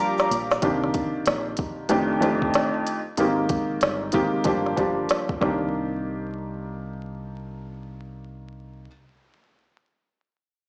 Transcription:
Already playing: F3 G3 A#3 D4 G4 F5 A#5 D6
0.18 snare, shaker
0.31 A#1, closed hi-hat, shaker
0.51 snare, shaker
0.62 C2 D#3 A#3 C4 D4 G4, kick, closed hi-hat
0.84 snare
0.94 kick, closed hi-hat
1.26 A#1, snare, closed hi-hat
1.57 kick, closed hi-hat
1.89 F1 F2 D#3 A3 C4 D4 G4, closed hi-hat
2.20 F2 D#3 A3 C4 D4 G4, closed hi-hat
2.42 kick
2.54 snare, closed hi-hat
2.87 closed hi-hat
3.17 G#1 D#3 G#3 A#3 C4 G4, closed hi-hat
3.49 kick, closed hi-hat
3.81 G1, snare, closed hi-hat
4.12 D#3 G#3 A#3 C4 G4, kick, closed hi-hat
4.44 G1 F3 G3 A#3 D4 G4, kick, closed hi-hat
4.66 snare
4.76 G1 F3 G3 A#3 D4 G4, kick, closed hi-hat
5.09 snare, closed hi-hat
5.29 kick
5.41 C2 D#3 A#3 C4 D4 G4, kick, snare

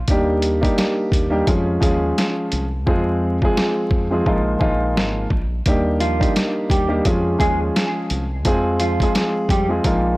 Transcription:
0.08 D#2 G3 A#3 D4 D#4 G4, kick, closed hi-hat
0.42 closed hi-hat
0.61 G3 A#3 D4 D#4 G4, kick, closed hi-hat
0.78 snare, closed hi-hat
1.12 D#2, kick, closed hi-hat
1.30 G3 A#3 D4 D#4 G4
1.47 F2 F3 G#3 C#4 F4 G#4, kick, closed hi-hat
1.80 D#2 F3 G#3 C#4 F4 G#4, kick, closed hi-hat
2.18 snare, closed hi-hat
2.52 C2, closed hi-hat
2.87 F2 F3 G#3 C4 F4 G#4, kick
3.42 F3 G#3 C4 F4 G#4, kick
3.57 snare
3.91 F2, kick
4.10 F3 G#3 C4 F4 G#4
4.26 A#1 F3 G#3 A#3 D#4 F4, kick
4.59 A#1 F3 G#3 A#3 D#4 F4, kick
4.97 G#1, snare
5.30 A#1, kick
5.66 D#2 G3 A#3 D4 D#4 G4, kick, closed hi-hat
6.00 F3 F4, closed hi-hat
6.19 G3 A#3 D4 D#4 G4, kick, closed hi-hat
6.36 snare, closed hi-hat
6.70 D#2 G3 G4, kick, closed hi-hat
6.88 G3 A#3 D4 D#4 G4
7.05 F2 F3 G#3 C#4 F4 G#4, kick, closed hi-hat
7.39 D#2 F3 G#3 C#4 F4 G#4, kick, closed hi-hat
7.76 snare, closed hi-hat
8.10 C2, closed hi-hat
8.45 F2 F3 G#3 C4 F4 G#4, kick, closed hi-hat
8.80 F3 F4, closed hi-hat
9.00 F3 G#3 C4 F4 G#4, kick, closed hi-hat
9.15 snare, closed hi-hat
9.49 F2 G3 G4, kick, closed hi-hat
9.69 F3 G#3 C4 F4 G#4
9.84 A#1 F3 G#3 A#3 D#4 F4, kick, closed hi-hat

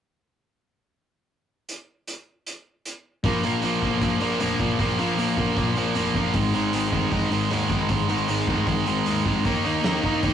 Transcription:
1.69 closed hi-hat
2.07 closed hi-hat
2.47 closed hi-hat
2.85 closed hi-hat
3.24 A#1 A#2 F3 A#3, kick, open hi-hat
3.43 A#1 A#2 F3 A#3, open hi-hat
3.62 A#1 A#2 F3 A#3, open hi-hat
3.82 G1 A#2 F3 A#3, kick, open hi-hat
4.01 A#1 A#2 F3 A#3, kick, open hi-hat
4.21 A#1 A#2 F3 A#3, open hi-hat
4.40 F1 A#2 F3 A#3, open hi-hat
4.59 A#1 A#2 F3 A#3, kick, open hi-hat
4.79 A#1 A#2 F3 A#3, kick, open hi-hat
4.99 A#1 A#2 F3 A#3, open hi-hat
5.17 A#1 A#2 F3 A#3, open hi-hat
5.37 G1 A#2 F3 A#3, kick, open hi-hat
5.57 A#1 A#2 F3 A#3, kick, open hi-hat
5.76 A#1 A#2 F3 A#3, open hi-hat
5.95 F1 A#2 F3 A#3, open hi-hat
6.14 A#1 A#2 F3 A#3, kick, open hi-hat
6.34 G#1 G#2 D#3 G#3, kick, open hi-hat
6.53 G#1 G#2 D#3 G#3, open hi-hat
6.73 G#1 G#2 D#3 G#3, open hi-hat
6.92 F1 G#2 D#3 G#3, kick, open hi-hat
7.11 G#1 G#2 D#3 G#3, kick, open hi-hat
7.31 G#1 G#2 D#3 G#3, open hi-hat
7.50 D#2 G#2 D#3 G#3, open hi-hat
7.70 G#1 G#2 D#3 G#3, kick, open hi-hat
7.89 G#1 G#2 D#3 G#3, kick, open hi-hat
8.09 G#1 G#2 D#3 G#3, open hi-hat
8.28 G#1 G#2 D#3 G#3, open hi-hat
8.47 F1 G#2 D#3 G#3, kick, open hi-hat
8.66 G#1 G#2 D#3 G#3, kick, open hi-hat
8.86 G#1 G#2 D#3 G#3, open hi-hat
9.06 D#2 G#2 D#3 G#3, open hi-hat
9.26 G#1 G#2 D#3 G#3, kick, open hi-hat
9.45 D#2 D#3 A#3 D#4, kick, open hi-hat
9.65 D#2 D#3 A#3 D#4, open hi-hat
9.84 D#2 D#3 A#3 D#4, snare, open hi-hat
10.03 C2 D#3 A#3 D#4, kick, open hi-hat
10.23 D#2 D#3 A#3 D#4, kick, open hi-hat

